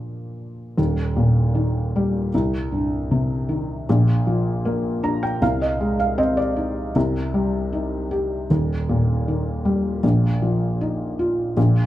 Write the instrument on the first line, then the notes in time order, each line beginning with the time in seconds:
felt piano
Already playing: A#2 F3 A#3 D4
0.78 D#1 D#2
1.16 A#2
1.55 D#3
1.96 G3
2.34 C2
2.72 G2
3.11 C3
3.49 D#3
3.89 A#1 A#2
4.27 F3
4.65 A#3
5.03 D4 A#5
5.23 G5
5.42 C2 C3 F5
5.62 D#5
5.81 G#3
6.00 F5
6.18 C4 D#5
6.37 D5
6.56 D#4
6.96 C2 C3
7.34 G3
7.73 D#4
8.11 G4
8.50 D#1 D#2
8.89 A#2
9.28 D#3
9.65 G3
10.03 A#1 A#2
10.42 F3
10.81 D#4
11.19 F4
11.57 A#1 A#2